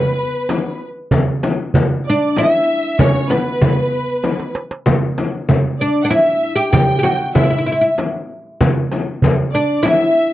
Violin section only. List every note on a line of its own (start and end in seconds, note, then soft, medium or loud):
0.00 0.81 B4 medium
2.05 2.35 D5 medium
2.37 2.99 E5 medium
2.99 3.31 C#5 medium
3.30 4.55 B4 medium
5.79 6.02 D5 medium
6.03 6.10 F#5 soft
6.11 6.58 E5 medium
6.56 6.71 G5 medium
6.72 7.31 G5 medium
7.36 7.94 E5 medium
9.53 9.82 D5 medium
9.85 10.33 E5 medium